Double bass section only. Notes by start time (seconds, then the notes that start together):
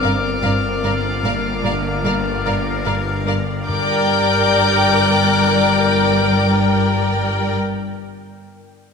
0.02 G2
0.43 G2
0.84 G2
1.24 G2
1.64 G2
2.04 G2
2.46 G2
2.86 G2
3.26 G2
3.67 G2